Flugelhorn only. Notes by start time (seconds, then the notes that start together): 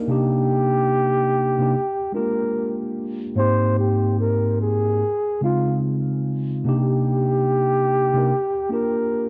0.09 G4
2.15 A#4
3.38 C5
3.79 G4
4.20 A#4
4.62 G#4
5.44 F4
6.67 G4
8.73 A#4